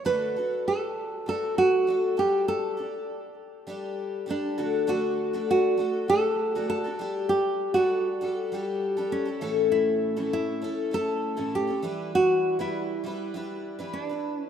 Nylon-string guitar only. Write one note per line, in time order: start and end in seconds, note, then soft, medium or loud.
0.06 0.67 B4 medium
0.68 1.28 A4 medium
1.29 1.58 A4 medium
1.58 2.19 F#4 medium
2.19 2.48 G4 medium
2.48 3.34 A4 medium
4.30 4.91 D4 medium
4.89 5.45 F#4 medium
5.51 6.06 F#4 medium
6.10 6.68 A4 medium
6.70 7.26 A4 medium
7.29 7.74 G4 medium
7.74 8.61 F#4 medium
9.12 9.68 C#4 medium
9.72 10.32 E4 medium
10.33 10.95 E4 medium
10.94 11.50 A4 medium
11.55 12.15 G4 medium
12.15 12.56 F#4 medium
12.61 13.46 E4 medium
13.93 14.38 D4 medium
14.38 14.50 C#4 medium